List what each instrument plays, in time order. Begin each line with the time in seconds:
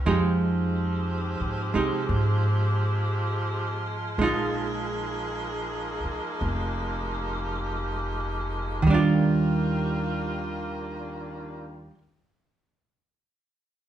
0.06 upright bass F2, hollow-body jazz guitar F3 G#3 D#4 G4, saxophone section F3 G#3 C4 D#4 G4
1.40 upright bass G#2
1.74 upright bass C3, hollow-body jazz guitar G#3 D#4 G4
2.09 upright bass G#2, saxophone section F4
4.18 upright bass A#1, hollow-body jazz guitar G#3 D#4, saxophone section A#3 D#4 G#4
4.23 hollow-body jazz guitar F4
6.04 muted upright bass stroke
6.41 upright bass F1, saxophone section G4
8.82 upright bass D#2, hollow-body jazz guitar D#3, saxophone section D#3 G3 A#3 D4 F4
8.87 hollow-body jazz guitar G3 D4
8.94 hollow-body jazz guitar F4